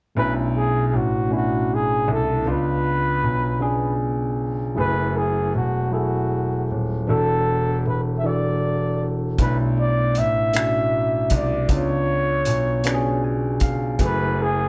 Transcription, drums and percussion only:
9.38 kick medium
9.38 closed hi-hat medium
10.15 closed hi-hat medium
10.53 finger snap medium
10.53 closed hi-hat medium
11.30 kick medium
11.30 closed hi-hat medium
11.69 kick medium
11.69 closed hi-hat medium
12.45 closed hi-hat medium
12.84 finger snap medium
12.84 closed hi-hat medium
13.60 kick medium
13.60 closed hi-hat medium
13.99 kick medium
13.99 closed hi-hat medium

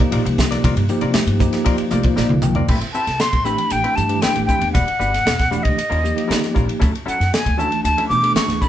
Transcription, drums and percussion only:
0.00 kick medium
0.00 ride medium
0.12 ride medium
0.26 ride medium
0.38 kick medium
0.38 snare loud
0.38 hi-hat pedal medium
0.38 muted conga soft
0.38 high conga medium
0.52 snare soft
0.52 ride medium
0.64 kick loud
0.64 ride medium
0.64 muted conga soft
0.77 ride medium
0.89 hi-hat pedal medium
1.01 ride medium
1.14 snare loud
1.14 ride medium
1.14 high conga medium
1.14 low conga medium
1.27 ride medium
1.40 kick medium
1.40 hi-hat pedal medium
1.53 snare soft
1.53 ride medium
1.66 kick medium
1.66 ride medium
1.66 muted conga soft
1.78 ride medium
1.91 hi-hat pedal medium
1.91 muted conga soft
1.91 high conga medium
2.03 kick medium
2.03 ride medium
2.17 snare medium
2.17 high conga medium
2.29 high tom medium
2.42 hi-hat pedal medium
2.42 mid tom medium
2.42 muted conga soft
2.55 floor tom medium
2.68 kick medium
2.68 crash medium
2.81 ride medium
2.94 hi-hat pedal medium
3.07 snare soft
3.07 ride medium
3.20 snare medium
3.20 hi-hat pedal medium
3.20 ride medium
3.33 kick medium
3.33 ride medium
3.45 hi-hat pedal medium
3.58 ride medium
3.70 hi-hat pedal medium
3.70 ride medium
3.84 ride medium
3.97 hi-hat pedal medium
4.09 ride medium
4.22 snare medium
4.22 hi-hat pedal medium
4.22 ride medium
4.35 ride medium
4.49 kick medium
4.49 hi-hat pedal medium
4.61 ride medium
4.75 kick loud
4.75 hi-hat pedal medium
4.75 ride medium
4.88 ride medium
5.01 hi-hat pedal medium
5.14 snare soft
5.14 ride medium
5.26 snare loud
5.26 hi-hat pedal medium
5.26 ride medium
5.39 kick medium
5.39 snare soft
5.39 ride medium
5.52 hi-hat pedal medium
5.65 kick medium
5.65 ride medium
5.78 hi-hat pedal medium
5.78 ride medium
5.92 ride medium
6.05 hi-hat pedal medium
6.18 ride medium
6.31 snare loud
6.31 hi-hat pedal medium
6.31 ride medium
6.44 snare soft
6.44 ride medium
6.56 kick medium
6.56 hi-hat pedal medium
6.69 ride medium
6.82 kick medium
6.82 hi-hat pedal medium
6.82 ride medium
6.95 ride soft
7.08 hi-hat pedal medium
7.21 snare soft
7.21 ride medium
7.34 snare loud
7.34 hi-hat pedal medium
7.34 ride medium
7.46 kick medium
7.46 ride medium
7.59 hi-hat pedal medium
7.72 ride medium
7.85 hi-hat pedal medium
7.85 ride medium
7.98 ride medium
8.11 hi-hat pedal medium
8.24 ride medium
8.36 snare loud
8.36 hi-hat pedal medium
8.36 ride medium
8.50 snare soft
8.50 ride medium
8.62 kick medium
8.62 hi-hat pedal medium

